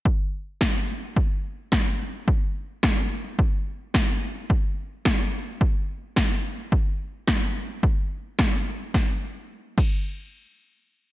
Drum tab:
CC |--------|--------|--------|--------|
SD |--o---o-|--o---o-|--o---o-|--o---o-|
BD |o-o-o-o-|o-o-o-o-|o-o-o-o-|o-o-o-o-|

CC |---x----|
SD |o-------|
BD |o--o----|